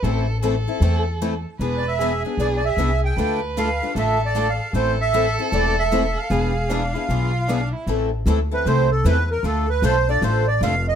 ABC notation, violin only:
X:1
M:4/4
L:1/8
Q:"Swing" 1/4=153
K:Am
V:1 name="Violin"
A2 A4- A z | B2 ^G6 | B4 A4 | A8 |
^G2 D E F2 D E | z8 | z8 |]